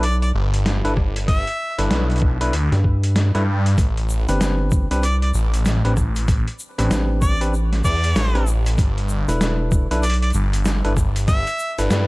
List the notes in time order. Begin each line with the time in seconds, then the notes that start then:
Already playing: B1
0.03 D5, closed hi-hat
0.22 D5, closed hi-hat
0.35 G1
0.54 closed hi-hat
0.66 snare, closed hi-hat
0.85 G1 D4 E4 A4 B4, closed hi-hat
0.97 kick, cross-stick
1.16 closed hi-hat
1.28 E5, kick, closed hi-hat
1.47 closed hi-hat
1.78 G1 D4 E4 A4 B4, closed hi-hat
1.91 B1, cross-stick, snare, closed hi-hat
2.10 closed hi-hat
2.11 closed hi-hat
2.16 closed hi-hat
2.18 closed hi-hat
2.20 kick, closed hi-hat
2.41 B1 D4 E4 A4 B4, closed hi-hat
2.53 D2, closed hi-hat
2.72 G2, snare, closed hi-hat
2.84 kick
3.03 closed hi-hat
3.16 snare, closed hi-hat
3.35 G2 D4 E4 A4 B4, cross-stick, closed hi-hat
3.66 closed hi-hat
3.78 A1, kick, closed hi-hat, shaker
3.97 closed hi-hat
4.10 shaker
4.28 G1 C4 D4 G4 B4, closed hi-hat, shaker
4.41 cross-stick, snare, closed hi-hat, shaker
4.71 kick, shaker
4.91 C2 C4 D4 G4 B4, closed hi-hat, shaker
5.03 D5, closed hi-hat, shaker
5.22 D5, closed hi-hat
5.34 A1, shaker
5.54 closed hi-hat, shaker
5.66 snare, closed hi-hat, shaker
5.85 A1 C4 D4 G4 B4, closed hi-hat
5.97 kick, cross-stick, shaker
6.16 closed hi-hat, shaker
6.28 kick, closed hi-hat, shaker
6.48 closed hi-hat
6.59 shaker
6.78 A1 C4 D4 G4 B4, closed hi-hat, shaker
6.91 A1, snare, closed hi-hat, shaker
7.22 D5, kick, shaker
7.41 C4 D4 G4 B4, closed hi-hat, shaker
7.54 shaker
7.73 snare, closed hi-hat
7.84 E2 D5, kick, shaker
8.03 closed hi-hat, shaker
8.16 A1, snare, closed hi-hat, shaker
8.35 C4 D4 G4 B4, cross-stick, closed hi-hat
8.47 shaker
8.66 closed hi-hat, shaker
8.78 G1, kick, closed hi-hat, shaker
8.98 closed hi-hat
9.09 shaker
9.28 E1 D4 E4 A4 B4, closed hi-hat, shaker
9.41 cross-stick, snare, closed hi-hat, shaker
9.72 kick, shaker
9.91 B1 D4 E4 A4 B4, closed hi-hat, shaker
10.03 D5, closed hi-hat, shaker
10.10 closed hi-hat
10.14 closed hi-hat
10.22 D5, closed hi-hat
10.24 closed hi-hat
10.30 G1, closed hi-hat, shaker
10.53 closed hi-hat, shaker
10.65 snare, closed hi-hat, shaker
10.85 G1 D4 E4 A4 B4, closed hi-hat
10.97 kick, cross-stick, shaker
11.16 closed hi-hat, shaker
11.28 E5, kick, closed hi-hat, shaker
11.47 closed hi-hat, shaker
11.59 shaker
11.78 G1 D4 E4 A4 B4, closed hi-hat, shaker
11.90 G2, snare, closed hi-hat, shaker